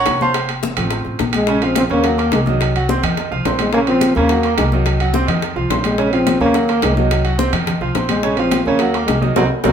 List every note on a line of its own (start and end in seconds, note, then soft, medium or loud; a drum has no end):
0.00 0.31 F#3 medium
0.00 0.31 C#4 medium
0.00 0.31 F4 medium
0.00 0.20 C#5 medium
0.00 0.19 F#5 loud
0.00 0.20 A#5 medium
0.00 0.19 C#6 loud
0.06 0.72 F1 medium
0.06 high bongo medium
0.06 low bongo medium
0.06 high conga medium
0.06 high timbale medium
0.20 0.48 C5 medium
0.20 0.48 F5 medium
0.20 0.48 A5 medium
0.20 0.48 C6 medium
0.20 high bongo soft
0.20 high conga medium
0.34 high bongo medium
0.34 high conga soft
0.34 high timbale loud
0.49 high conga soft
0.49 high timbale medium
0.63 high bongo medium
0.63 high conga medium
0.77 1.03 A1 medium
0.77 1.17 A3 medium
0.77 1.17 C4 medium
0.77 1.18 F4 medium
0.77 high bongo soft
0.77 high conga soft
0.77 low conga medium
0.77 high timbale medium
0.90 high bongo medium
0.90 high conga soft
0.90 high timbale medium
1.05 1.19 A1 medium
1.05 high bongo soft
1.05 high conga soft
1.19 1.85 A#1 medium
1.19 high bongo medium
1.19 low bongo medium
1.19 high conga medium
1.19 high timbale medium
1.33 1.65 G#3 loud
1.33 high bongo soft
1.33 high conga medium
1.33 high timbale loud
1.47 1.60 C#3 medium
1.47 1.60 C#4 medium
1.47 1.60 C#5 medium
1.47 high bongo medium
1.47 high conga soft
1.62 1.85 F3 medium
1.62 1.77 C4 medium
1.62 1.85 F4 medium
1.62 1.85 F5 medium
1.62 high conga soft
1.62 high timbale medium
1.75 1.83 C4 loud
1.75 high bongo medium
1.75 high conga medium
1.75 high timbale medium
1.90 2.30 D#2 loud
1.90 2.02 C#3 medium
1.90 2.30 A#3 loud
1.90 2.02 C#4 medium
1.90 2.02 C#5 medium
1.90 high bongo soft
1.90 high conga soft
2.04 2.16 F#3 medium
2.04 2.16 F#4 medium
2.04 2.16 F#5 medium
2.04 high bongo medium
2.04 high conga soft
2.04 high timbale medium
2.18 2.41 A#3 medium
2.18 2.41 A#4 medium
2.18 2.42 A#5 medium
2.18 high bongo soft
2.18 high conga soft
2.18 high timbale medium
2.32 2.98 C2 medium
2.32 2.40 G#3 medium
2.32 high bongo medium
2.32 low bongo medium
2.32 high conga medium
2.32 high timbale medium
2.46 2.69 D#3 medium
2.46 2.87 F#3 medium
2.46 2.70 D#4 medium
2.46 2.70 D#5 medium
2.46 high bongo soft
2.46 high conga medium
2.61 high bongo medium
2.61 high conga soft
2.61 high timbale medium
2.75 2.87 F#3 medium
2.75 2.87 F#4 medium
2.75 2.87 F#5 medium
2.75 high conga soft
2.75 high timbale medium
2.89 3.00 C3 medium
2.89 3.01 C4 medium
2.89 3.01 C5 medium
2.89 high bongo medium
2.89 high conga medium
3.03 3.29 F2 loud
3.03 3.27 D#3 medium
3.03 3.27 D#4 medium
3.03 3.27 D#5 medium
3.03 high bongo soft
3.03 high conga soft
3.03 low conga medium
3.03 high timbale loud
3.17 high bongo medium
3.17 high conga soft
3.17 high timbale medium
3.31 3.44 C2 medium
3.31 3.43 F3 medium
3.31 3.43 F4 medium
3.31 3.43 F5 medium
3.31 high bongo soft
3.31 high conga soft
3.45 4.10 A#1 medium
3.45 3.69 C4 medium
3.45 3.69 C5 medium
3.45 3.69 C6 medium
3.45 high bongo medium
3.45 low bongo medium
3.45 high conga medium
3.45 high timbale medium
3.45 low timbale medium
3.59 3.73 G#3 medium
3.59 high bongo soft
3.59 high conga medium
3.59 high timbale loud
3.73 3.85 C#3 medium
3.73 3.80 A#3 loud
3.73 3.85 C#4 medium
3.73 3.85 C#5 medium
3.73 high bongo medium
3.73 high conga soft
3.87 4.11 F3 medium
3.87 4.14 C4 loud
3.87 4.11 F4 medium
3.87 4.11 F5 medium
3.87 high conga soft
3.87 high timbale medium
4.01 high bongo medium
4.01 high conga loud
4.01 high timbale medium
4.15 4.55 D#2 loud
4.15 4.28 C#3 medium
4.15 4.55 A#3 loud
4.15 4.28 C#4 medium
4.15 4.28 C#5 medium
4.15 high bongo soft
4.15 high conga soft
4.29 4.42 F#3 medium
4.29 4.42 F#4 medium
4.29 4.42 F#5 medium
4.29 high bongo medium
4.29 high conga soft
4.29 high timbale medium
4.43 4.67 A#3 medium
4.43 4.68 A#4 medium
4.43 4.68 A#5 medium
4.43 high bongo soft
4.43 high conga soft
4.43 high timbale medium
4.58 5.23 C2 medium
4.58 4.64 G#3 medium
4.58 high bongo medium
4.58 low bongo medium
4.58 high conga medium
4.58 high timbale loud
4.72 4.96 D#3 medium
4.72 5.11 F#3 medium
4.72 4.96 D#4 medium
4.72 4.96 D#5 medium
4.72 high bongo soft
4.72 high conga medium
4.86 high bongo medium
4.86 high conga soft
4.86 high timbale medium
5.00 5.12 F#3 medium
5.00 5.12 F#4 medium
5.00 5.12 F#5 medium
5.00 high conga soft
5.00 high timbale medium
5.14 5.26 C3 medium
5.14 5.26 C4 medium
5.14 5.26 C5 medium
5.14 high bongo medium
5.14 high conga medium
5.27 5.54 F2 loud
5.27 5.51 D#3 medium
5.27 5.51 D#4 medium
5.27 5.51 D#5 medium
5.27 high bongo soft
5.27 high conga soft
5.27 low conga medium
5.27 high timbale medium
5.42 high bongo medium
5.42 high conga soft
5.42 high timbale medium
5.56 5.69 C2 medium
5.56 5.68 F3 medium
5.56 5.68 F4 medium
5.56 5.68 F5 medium
5.56 high bongo soft
5.56 high conga soft
5.70 6.35 A#1 medium
5.70 5.94 C4 medium
5.70 5.94 C5 medium
5.70 5.94 C6 medium
5.70 high bongo medium
5.70 low bongo medium
5.70 high conga medium
5.70 high timbale medium
5.70 low timbale medium
5.84 6.13 G#3 loud
5.84 high bongo soft
5.84 high conga medium
5.84 high timbale medium
5.98 6.10 C#3 medium
5.98 6.10 C#4 medium
5.98 6.10 C#5 medium
5.98 high bongo medium
6.11 6.36 F3 medium
6.11 6.40 C4 loud
6.11 6.36 F4 medium
6.11 6.36 F5 medium
6.11 high conga soft
6.11 high timbale medium
6.27 high bongo medium
6.27 high conga loud
6.27 high timbale medium
6.40 6.80 D#2 medium
6.40 6.52 C#3 medium
6.40 6.80 A#3 loud
6.40 6.52 C#4 medium
6.40 6.53 C#5 medium
6.40 high bongo soft
6.40 high conga soft
6.54 6.66 F#3 medium
6.54 6.66 F#4 medium
6.54 6.66 F#5 medium
6.54 high bongo medium
6.54 high conga soft
6.54 high timbale medium
6.68 6.92 A#3 medium
6.68 6.92 A#4 medium
6.68 6.92 A#5 medium
6.68 high bongo soft
6.68 high conga soft
6.68 high timbale medium
6.82 7.48 C2 medium
6.82 6.96 G#3 medium
6.82 high bongo medium
6.82 low bongo medium
6.82 high conga medium
6.82 high timbale loud
6.82 low timbale medium
6.96 7.20 D#3 medium
6.96 7.36 F#3 medium
6.96 7.20 D#4 medium
6.96 7.20 D#5 medium
6.96 high bongo soft
6.96 high conga medium
7.11 high bongo medium
7.11 high timbale medium
7.24 7.36 F#3 medium
7.24 7.37 F#4 medium
7.24 7.37 F#5 medium
7.24 high conga soft
7.24 high timbale medium
7.38 7.50 C3 medium
7.38 7.50 C4 medium
7.38 7.51 C5 medium
7.38 high bongo medium
7.38 high conga loud
7.52 7.79 F2 medium
7.52 7.76 D#3 medium
7.52 7.76 D#4 medium
7.52 7.77 D#5 medium
7.52 high bongo soft
7.52 high conga soft
7.52 low conga medium
7.52 high timbale loud
7.67 high bongo medium
7.67 high conga soft
7.67 low conga medium
7.67 high timbale medium
7.81 7.94 C2 medium
7.81 7.93 F3 medium
7.81 7.93 F4 medium
7.81 7.93 F5 medium
7.81 high bongo soft
7.81 high conga soft
7.95 8.60 A#1 medium
7.95 8.19 C4 medium
7.95 8.19 C5 medium
7.95 8.19 C6 medium
7.95 high bongo medium
7.95 low bongo medium
7.95 high conga medium
7.95 high timbale medium
8.09 8.39 G#3 medium
8.09 high bongo soft
8.09 high conga medium
8.09 high timbale loud
8.23 8.35 C#3 medium
8.23 8.35 C#4 medium
8.23 8.35 C#5 medium
8.23 high bongo medium
8.23 high conga soft
8.37 8.61 F3 medium
8.37 8.64 C4 loud
8.37 8.61 F4 medium
8.37 8.62 F5 medium
8.37 high conga soft
8.37 high timbale medium
8.51 high bongo medium
8.51 high conga medium
8.51 high timbale loud
8.65 9.05 D#2 medium
8.65 8.78 C#3 medium
8.65 9.05 A#3 loud
8.65 8.78 C#4 medium
8.65 8.79 C#5 medium
8.65 high bongo soft
8.65 high conga soft
8.79 8.92 F#3 medium
8.79 8.92 F#4 medium
8.79 8.92 F#5 medium
8.79 high bongo medium
8.79 high conga soft
8.79 high timbale medium
8.94 9.17 A#3 medium
8.94 9.18 A#4 medium
8.94 9.18 A#5 medium
8.94 high bongo soft
8.94 high conga soft
8.94 high timbale medium
9.06 9.34 C2 medium
9.06 9.20 G#3 medium
9.06 high bongo medium
9.06 low bongo medium
9.06 high conga medium
9.06 high timbale medium
9.22 9.33 D#3 medium
9.22 9.35 F#3 medium
9.22 9.34 D#4 medium
9.22 9.34 D#5 medium
9.22 high bongo soft
9.22 high conga medium
9.36 9.46 C2 medium
9.36 9.43 F#3 medium
9.36 9.45 C4 loud
9.36 9.45 D#4 loud
9.36 9.46 F#4 loud
9.36 high bongo loud
9.36 high conga loud
9.36 high timbale loud
9.63 9.72 C2 loud
9.63 9.72 F#3 loud
9.63 9.72 C4 medium
9.63 9.72 D#4 medium
9.63 9.72 F#4 medium
9.63 high bongo loud
9.63 high conga loud
9.63 high timbale loud